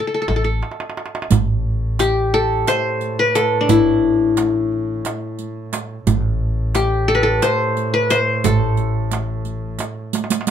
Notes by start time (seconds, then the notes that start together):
0.07 A4
0.14 A4
0.22 A4
0.28 A1 A4, darbuka tek
0.36 A4
0.44 A4
0.63 darbuka tek
0.71 darbuka ka
0.80 darbuka tek
0.90 darbuka ka
0.97 darbuka tek
1.06 darbuka ka
1.15 darbuka tek
1.22 darbuka ka
1.29 A1 A2, riq, darbuka dum
1.99 G4, riq, darbuka tek
2.34 A4
2.67 C5, riq, darbuka tek
3.01 riq
3.19 B4
3.35 A4, riq, darbuka tek
3.61 D4
3.69 A1 E4, riq, darbuka dum
4.37 riq, darbuka tek
4.72 darbuka ka
5.05 riq, darbuka tek
5.39 riq
5.73 riq, darbuka tek
6.06 A1 A2, riq, darbuka dum
6.75 G4, riq, darbuka tek
7.08 A4
7.15 B4
7.23 A4
7.42 C5, riq, darbuka tek
7.77 riq
7.94 B4
8.10 C5, riq, darbuka tek
8.44 A1 A4, riq, darbuka dum
8.77 riq, darbuka ka
9.11 riq, darbuka tek
9.45 riq, darbuka ka
9.79 riq, darbuka tek
10.13 riq, darbuka tek
10.24 darbuka ka
10.30 riq, darbuka tek
10.41 darbuka ka
10.47 riq